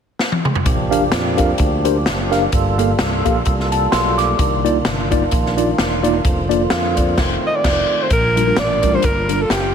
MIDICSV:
0, 0, Header, 1, 7, 480
1, 0, Start_track
1, 0, Key_signature, -2, "major"
1, 0, Tempo, 465477
1, 680, Time_signature, 4, 2, 24, 8
1, 10049, End_track
2, 0, Start_track
2, 0, Title_t, "Alto saxophone"
2, 0, Program_c, 0, 65
2, 7699, Note_on_c, 0, 75, 88
2, 7794, Note_on_c, 0, 74, 91
2, 7810, Note_off_c, 0, 75, 0
2, 8279, Note_on_c, 0, 72, 81
2, 8294, Note_off_c, 0, 74, 0
2, 8376, Note_off_c, 0, 72, 0
2, 8381, Note_on_c, 0, 70, 96
2, 8854, Note_on_c, 0, 74, 95
2, 8870, Note_off_c, 0, 70, 0
2, 9229, Note_on_c, 0, 72, 82
2, 9245, Note_off_c, 0, 74, 0
2, 9333, Note_on_c, 0, 70, 79
2, 9349, Note_off_c, 0, 72, 0
2, 9706, Note_on_c, 0, 69, 79
2, 9721, Note_off_c, 0, 70, 0
2, 9821, Note_on_c, 0, 67, 88
2, 9837, Note_off_c, 0, 69, 0
2, 10049, Note_off_c, 0, 67, 0
2, 10049, End_track
3, 0, Start_track
3, 0, Title_t, "Tine electric piano"
3, 0, Program_c, 1, 4
3, 682, Note_on_c, 1, 46, 61
3, 937, Note_on_c, 1, 67, 76
3, 938, Note_on_c, 1, 62, 77
3, 940, Note_on_c, 1, 70, 70
3, 940, Note_on_c, 1, 77, 83
3, 1060, Note_off_c, 1, 62, 0
3, 1060, Note_off_c, 1, 67, 0
3, 1061, Note_off_c, 1, 70, 0
3, 1061, Note_off_c, 1, 77, 0
3, 1391, Note_off_c, 1, 46, 0
3, 1416, Note_on_c, 1, 62, 73
3, 1416, Note_on_c, 1, 70, 72
3, 1417, Note_on_c, 1, 67, 69
3, 1418, Note_on_c, 1, 77, 80
3, 1540, Note_off_c, 1, 62, 0
3, 1540, Note_off_c, 1, 70, 0
3, 1541, Note_off_c, 1, 67, 0
3, 1541, Note_off_c, 1, 77, 0
3, 1903, Note_on_c, 1, 70, 72
3, 1904, Note_on_c, 1, 67, 70
3, 1905, Note_on_c, 1, 72, 84
3, 1907, Note_on_c, 1, 62, 69
3, 2025, Note_off_c, 1, 67, 0
3, 2025, Note_off_c, 1, 70, 0
3, 2026, Note_off_c, 1, 72, 0
3, 2027, Note_off_c, 1, 62, 0
3, 2382, Note_on_c, 1, 70, 82
3, 2384, Note_on_c, 1, 62, 79
3, 2385, Note_on_c, 1, 67, 73
3, 2389, Note_on_c, 1, 77, 96
3, 2506, Note_off_c, 1, 62, 0
3, 2506, Note_off_c, 1, 70, 0
3, 2507, Note_off_c, 1, 67, 0
3, 2509, Note_off_c, 1, 77, 0
3, 2603, Note_on_c, 1, 43, 68
3, 2869, Note_on_c, 1, 77, 82
3, 2870, Note_on_c, 1, 69, 69
3, 2871, Note_on_c, 1, 58, 81
3, 2871, Note_on_c, 1, 67, 73
3, 2990, Note_off_c, 1, 69, 0
3, 2990, Note_off_c, 1, 77, 0
3, 2991, Note_off_c, 1, 58, 0
3, 2991, Note_off_c, 1, 67, 0
3, 3316, Note_off_c, 1, 43, 0
3, 3352, Note_on_c, 1, 58, 72
3, 3353, Note_on_c, 1, 67, 71
3, 3355, Note_on_c, 1, 77, 84
3, 3359, Note_on_c, 1, 69, 72
3, 3472, Note_off_c, 1, 58, 0
3, 3472, Note_off_c, 1, 67, 0
3, 3474, Note_off_c, 1, 77, 0
3, 3476, Note_off_c, 1, 69, 0
3, 3836, Note_on_c, 1, 81, 60
3, 4040, Note_on_c, 1, 84, 63
3, 4041, Note_off_c, 1, 81, 0
3, 4302, Note_off_c, 1, 84, 0
3, 4309, Note_on_c, 1, 86, 68
3, 4527, Note_on_c, 1, 48, 72
3, 4772, Note_off_c, 1, 86, 0
3, 4791, Note_on_c, 1, 58, 81
3, 4791, Note_on_c, 1, 63, 70
3, 4791, Note_on_c, 1, 65, 72
3, 4792, Note_on_c, 1, 74, 89
3, 4913, Note_off_c, 1, 58, 0
3, 4913, Note_off_c, 1, 63, 0
3, 4913, Note_off_c, 1, 65, 0
3, 4913, Note_off_c, 1, 74, 0
3, 5238, Note_off_c, 1, 48, 0
3, 5269, Note_on_c, 1, 58, 78
3, 5269, Note_on_c, 1, 65, 75
3, 5271, Note_on_c, 1, 63, 74
3, 5274, Note_on_c, 1, 74, 92
3, 5392, Note_off_c, 1, 58, 0
3, 5392, Note_off_c, 1, 65, 0
3, 5393, Note_off_c, 1, 63, 0
3, 5395, Note_off_c, 1, 74, 0
3, 5745, Note_on_c, 1, 63, 67
3, 5746, Note_on_c, 1, 74, 87
3, 5748, Note_on_c, 1, 58, 75
3, 5752, Note_on_c, 1, 65, 70
3, 5870, Note_off_c, 1, 63, 0
3, 5871, Note_off_c, 1, 58, 0
3, 5871, Note_off_c, 1, 74, 0
3, 5874, Note_off_c, 1, 65, 0
3, 6221, Note_on_c, 1, 65, 82
3, 6222, Note_on_c, 1, 58, 82
3, 6222, Note_on_c, 1, 74, 93
3, 6223, Note_on_c, 1, 63, 74
3, 6347, Note_off_c, 1, 65, 0
3, 6348, Note_off_c, 1, 58, 0
3, 6348, Note_off_c, 1, 74, 0
3, 6349, Note_off_c, 1, 63, 0
3, 6695, Note_on_c, 1, 74, 85
3, 6696, Note_on_c, 1, 62, 72
3, 6697, Note_on_c, 1, 58, 81
3, 6702, Note_on_c, 1, 65, 75
3, 6824, Note_off_c, 1, 74, 0
3, 6825, Note_off_c, 1, 58, 0
3, 6825, Note_off_c, 1, 62, 0
3, 6827, Note_off_c, 1, 65, 0
3, 6911, Note_on_c, 1, 77, 63
3, 7175, Note_off_c, 1, 77, 0
3, 7185, Note_on_c, 1, 74, 63
3, 7393, Note_off_c, 1, 74, 0
3, 8366, Note_on_c, 1, 46, 60
3, 8620, Note_on_c, 1, 55, 71
3, 8623, Note_on_c, 1, 62, 60
3, 8624, Note_on_c, 1, 70, 71
3, 8626, Note_on_c, 1, 65, 63
3, 8685, Note_off_c, 1, 55, 0
3, 8686, Note_off_c, 1, 62, 0
3, 8686, Note_off_c, 1, 70, 0
3, 8688, Note_off_c, 1, 65, 0
3, 8733, Note_on_c, 1, 62, 61
3, 8733, Note_on_c, 1, 65, 56
3, 8734, Note_on_c, 1, 55, 58
3, 8734, Note_on_c, 1, 70, 72
3, 8854, Note_off_c, 1, 62, 0
3, 8854, Note_off_c, 1, 65, 0
3, 8854, Note_off_c, 1, 70, 0
3, 8855, Note_off_c, 1, 55, 0
3, 9069, Note_off_c, 1, 46, 0
3, 9105, Note_on_c, 1, 55, 69
3, 9106, Note_on_c, 1, 70, 70
3, 9107, Note_on_c, 1, 65, 61
3, 9110, Note_on_c, 1, 62, 62
3, 9166, Note_off_c, 1, 55, 0
3, 9166, Note_off_c, 1, 70, 0
3, 9167, Note_off_c, 1, 65, 0
3, 9168, Note_off_c, 1, 62, 0
3, 9210, Note_on_c, 1, 70, 66
3, 9211, Note_on_c, 1, 65, 59
3, 9212, Note_on_c, 1, 62, 52
3, 9216, Note_on_c, 1, 55, 65
3, 9331, Note_off_c, 1, 70, 0
3, 9332, Note_off_c, 1, 62, 0
3, 9332, Note_off_c, 1, 65, 0
3, 9334, Note_off_c, 1, 55, 0
3, 9579, Note_on_c, 1, 70, 70
3, 9583, Note_on_c, 1, 55, 67
3, 9583, Note_on_c, 1, 62, 60
3, 9583, Note_on_c, 1, 65, 61
3, 9699, Note_off_c, 1, 70, 0
3, 9701, Note_off_c, 1, 55, 0
3, 9701, Note_off_c, 1, 62, 0
3, 9701, Note_off_c, 1, 65, 0
3, 10049, End_track
4, 0, Start_track
4, 0, Title_t, "String section"
4, 0, Program_c, 2, 48
4, 8354, Note_on_c, 2, 58, 62
4, 8358, Note_on_c, 2, 55, 65
4, 8359, Note_on_c, 2, 62, 55
4, 8360, Note_on_c, 2, 65, 73
4, 10049, Note_off_c, 2, 55, 0
4, 10049, Note_off_c, 2, 58, 0
4, 10049, Note_off_c, 2, 62, 0
4, 10049, Note_off_c, 2, 65, 0
4, 10049, End_track
5, 0, Start_track
5, 0, Title_t, "Tonewheel organ"
5, 0, Program_c, 3, 16
5, 684, Note_on_c, 3, 58, 61
5, 685, Note_on_c, 3, 67, 65
5, 686, Note_on_c, 3, 62, 57
5, 687, Note_on_c, 3, 53, 63
5, 2593, Note_off_c, 3, 62, 0
5, 2593, Note_off_c, 3, 67, 0
5, 2594, Note_off_c, 3, 53, 0
5, 2615, Note_on_c, 3, 69, 74
5, 2616, Note_on_c, 3, 65, 58
5, 2621, Note_on_c, 3, 55, 65
5, 4499, Note_off_c, 3, 58, 0
5, 4519, Note_off_c, 3, 69, 0
5, 4522, Note_off_c, 3, 55, 0
5, 4540, Note_on_c, 3, 62, 58
5, 4542, Note_on_c, 3, 51, 66
5, 4543, Note_on_c, 3, 58, 61
5, 6419, Note_off_c, 3, 65, 0
5, 6435, Note_on_c, 3, 50, 62
5, 6436, Note_on_c, 3, 65, 70
5, 6438, Note_off_c, 3, 62, 0
5, 6438, Note_on_c, 3, 53, 55
5, 6439, Note_off_c, 3, 51, 0
5, 7387, Note_off_c, 3, 58, 0
5, 7392, Note_off_c, 3, 50, 0
5, 7394, Note_off_c, 3, 53, 0
5, 7403, Note_on_c, 3, 60, 56
5, 7404, Note_on_c, 3, 51, 61
5, 7410, Note_on_c, 3, 57, 53
5, 8339, Note_off_c, 3, 65, 0
5, 8354, Note_off_c, 3, 51, 0
5, 8354, Note_off_c, 3, 60, 0
5, 8357, Note_off_c, 3, 57, 0
5, 10049, End_track
6, 0, Start_track
6, 0, Title_t, "Fingered electric bass"
6, 0, Program_c, 4, 33
6, 683, Note_on_c, 4, 34, 75
6, 1092, Note_off_c, 4, 34, 0
6, 1161, Note_on_c, 4, 41, 88
6, 1572, Note_off_c, 4, 41, 0
6, 1645, Note_on_c, 4, 38, 82
6, 2136, Note_on_c, 4, 30, 76
6, 2151, Note_off_c, 4, 38, 0
6, 2542, Note_off_c, 4, 30, 0
6, 2611, Note_on_c, 4, 31, 82
6, 3020, Note_off_c, 4, 31, 0
6, 3094, Note_on_c, 4, 36, 81
6, 3321, Note_off_c, 4, 36, 0
6, 3365, Note_on_c, 4, 34, 93
6, 3544, Note_off_c, 4, 34, 0
6, 3576, Note_on_c, 4, 36, 93
6, 3984, Note_off_c, 4, 36, 0
6, 4051, Note_on_c, 4, 35, 81
6, 4461, Note_off_c, 4, 35, 0
6, 4529, Note_on_c, 4, 36, 82
6, 4940, Note_off_c, 4, 36, 0
6, 5015, Note_on_c, 4, 31, 87
6, 5423, Note_off_c, 4, 31, 0
6, 5492, Note_on_c, 4, 34, 91
6, 5901, Note_off_c, 4, 34, 0
6, 5970, Note_on_c, 4, 28, 83
6, 6380, Note_off_c, 4, 28, 0
6, 6448, Note_on_c, 4, 29, 78
6, 6858, Note_off_c, 4, 29, 0
6, 6927, Note_on_c, 4, 41, 85
6, 7399, Note_off_c, 4, 41, 0
6, 7406, Note_on_c, 4, 29, 91
6, 7590, Note_off_c, 4, 29, 0
6, 7888, Note_on_c, 4, 29, 86
6, 8070, Note_off_c, 4, 29, 0
6, 8362, Note_on_c, 4, 34, 78
6, 8770, Note_off_c, 4, 34, 0
6, 8844, Note_on_c, 4, 33, 87
6, 9250, Note_off_c, 4, 33, 0
6, 9322, Note_on_c, 4, 31, 78
6, 9727, Note_off_c, 4, 31, 0
6, 9799, Note_on_c, 4, 30, 91
6, 10049, Note_off_c, 4, 30, 0
6, 10049, End_track
7, 0, Start_track
7, 0, Title_t, "Drums"
7, 200, Note_on_c, 9, 38, 59
7, 303, Note_off_c, 9, 38, 0
7, 331, Note_on_c, 9, 48, 73
7, 435, Note_off_c, 9, 48, 0
7, 465, Note_on_c, 9, 47, 84
7, 568, Note_off_c, 9, 47, 0
7, 572, Note_on_c, 9, 43, 93
7, 675, Note_off_c, 9, 43, 0
7, 677, Note_on_c, 9, 42, 79
7, 680, Note_on_c, 9, 36, 107
7, 781, Note_off_c, 9, 42, 0
7, 783, Note_off_c, 9, 36, 0
7, 952, Note_on_c, 9, 42, 67
7, 1055, Note_off_c, 9, 42, 0
7, 1151, Note_on_c, 9, 38, 106
7, 1152, Note_on_c, 9, 42, 80
7, 1254, Note_off_c, 9, 38, 0
7, 1255, Note_off_c, 9, 42, 0
7, 1422, Note_on_c, 9, 42, 67
7, 1434, Note_on_c, 9, 36, 78
7, 1525, Note_off_c, 9, 42, 0
7, 1537, Note_off_c, 9, 36, 0
7, 1629, Note_on_c, 9, 42, 76
7, 1646, Note_on_c, 9, 36, 103
7, 1732, Note_off_c, 9, 42, 0
7, 1749, Note_off_c, 9, 36, 0
7, 1908, Note_on_c, 9, 42, 67
7, 2011, Note_off_c, 9, 42, 0
7, 2123, Note_on_c, 9, 38, 97
7, 2131, Note_on_c, 9, 42, 77
7, 2226, Note_off_c, 9, 38, 0
7, 2234, Note_off_c, 9, 42, 0
7, 2396, Note_on_c, 9, 38, 32
7, 2397, Note_on_c, 9, 42, 52
7, 2499, Note_off_c, 9, 38, 0
7, 2500, Note_off_c, 9, 42, 0
7, 2602, Note_on_c, 9, 42, 87
7, 2606, Note_on_c, 9, 36, 106
7, 2705, Note_off_c, 9, 42, 0
7, 2709, Note_off_c, 9, 36, 0
7, 2877, Note_on_c, 9, 42, 67
7, 2980, Note_off_c, 9, 42, 0
7, 3080, Note_on_c, 9, 38, 111
7, 3081, Note_on_c, 9, 42, 75
7, 3183, Note_off_c, 9, 38, 0
7, 3184, Note_off_c, 9, 42, 0
7, 3357, Note_on_c, 9, 42, 63
7, 3363, Note_on_c, 9, 36, 77
7, 3460, Note_off_c, 9, 42, 0
7, 3466, Note_off_c, 9, 36, 0
7, 3562, Note_on_c, 9, 42, 81
7, 3574, Note_on_c, 9, 36, 105
7, 3665, Note_off_c, 9, 42, 0
7, 3677, Note_off_c, 9, 36, 0
7, 3712, Note_on_c, 9, 38, 34
7, 3815, Note_off_c, 9, 38, 0
7, 3836, Note_on_c, 9, 42, 71
7, 3939, Note_off_c, 9, 42, 0
7, 4044, Note_on_c, 9, 38, 100
7, 4052, Note_on_c, 9, 42, 82
7, 4148, Note_off_c, 9, 38, 0
7, 4155, Note_off_c, 9, 42, 0
7, 4315, Note_on_c, 9, 38, 32
7, 4316, Note_on_c, 9, 42, 54
7, 4418, Note_off_c, 9, 38, 0
7, 4419, Note_off_c, 9, 42, 0
7, 4527, Note_on_c, 9, 36, 122
7, 4527, Note_on_c, 9, 42, 81
7, 4631, Note_off_c, 9, 36, 0
7, 4631, Note_off_c, 9, 42, 0
7, 4802, Note_on_c, 9, 42, 60
7, 4905, Note_off_c, 9, 42, 0
7, 5000, Note_on_c, 9, 38, 110
7, 5001, Note_on_c, 9, 42, 78
7, 5104, Note_off_c, 9, 38, 0
7, 5104, Note_off_c, 9, 42, 0
7, 5276, Note_on_c, 9, 42, 61
7, 5280, Note_on_c, 9, 36, 82
7, 5379, Note_off_c, 9, 42, 0
7, 5383, Note_off_c, 9, 36, 0
7, 5479, Note_on_c, 9, 42, 78
7, 5490, Note_on_c, 9, 36, 110
7, 5583, Note_off_c, 9, 42, 0
7, 5593, Note_off_c, 9, 36, 0
7, 5630, Note_on_c, 9, 38, 36
7, 5733, Note_off_c, 9, 38, 0
7, 5753, Note_on_c, 9, 42, 63
7, 5856, Note_off_c, 9, 42, 0
7, 5965, Note_on_c, 9, 38, 101
7, 5973, Note_on_c, 9, 42, 83
7, 6068, Note_off_c, 9, 38, 0
7, 6076, Note_off_c, 9, 42, 0
7, 6231, Note_on_c, 9, 42, 56
7, 6334, Note_off_c, 9, 42, 0
7, 6442, Note_on_c, 9, 36, 112
7, 6442, Note_on_c, 9, 42, 87
7, 6545, Note_off_c, 9, 36, 0
7, 6545, Note_off_c, 9, 42, 0
7, 6713, Note_on_c, 9, 42, 66
7, 6816, Note_off_c, 9, 42, 0
7, 6911, Note_on_c, 9, 38, 120
7, 6912, Note_on_c, 9, 42, 71
7, 7014, Note_off_c, 9, 38, 0
7, 7015, Note_off_c, 9, 42, 0
7, 7187, Note_on_c, 9, 42, 65
7, 7194, Note_on_c, 9, 36, 78
7, 7290, Note_off_c, 9, 42, 0
7, 7297, Note_off_c, 9, 36, 0
7, 7400, Note_on_c, 9, 38, 94
7, 7400, Note_on_c, 9, 49, 71
7, 7402, Note_on_c, 9, 36, 94
7, 7503, Note_off_c, 9, 38, 0
7, 7503, Note_off_c, 9, 49, 0
7, 7505, Note_off_c, 9, 36, 0
7, 7882, Note_on_c, 9, 36, 98
7, 7882, Note_on_c, 9, 38, 91
7, 7882, Note_on_c, 9, 49, 80
7, 7985, Note_off_c, 9, 36, 0
7, 7985, Note_off_c, 9, 38, 0
7, 7985, Note_off_c, 9, 49, 0
7, 8357, Note_on_c, 9, 42, 74
7, 8360, Note_on_c, 9, 36, 113
7, 8460, Note_off_c, 9, 42, 0
7, 8463, Note_off_c, 9, 36, 0
7, 8633, Note_on_c, 9, 42, 62
7, 8736, Note_off_c, 9, 42, 0
7, 8833, Note_on_c, 9, 38, 113
7, 8834, Note_on_c, 9, 42, 74
7, 8936, Note_off_c, 9, 38, 0
7, 8937, Note_off_c, 9, 42, 0
7, 9103, Note_on_c, 9, 42, 67
7, 9112, Note_on_c, 9, 36, 77
7, 9206, Note_off_c, 9, 42, 0
7, 9215, Note_off_c, 9, 36, 0
7, 9307, Note_on_c, 9, 42, 78
7, 9322, Note_on_c, 9, 36, 100
7, 9410, Note_off_c, 9, 42, 0
7, 9425, Note_off_c, 9, 36, 0
7, 9582, Note_on_c, 9, 42, 68
7, 9685, Note_off_c, 9, 42, 0
7, 9797, Note_on_c, 9, 38, 98
7, 9804, Note_on_c, 9, 42, 83
7, 9900, Note_off_c, 9, 38, 0
7, 9907, Note_off_c, 9, 42, 0
7, 10049, End_track
0, 0, End_of_file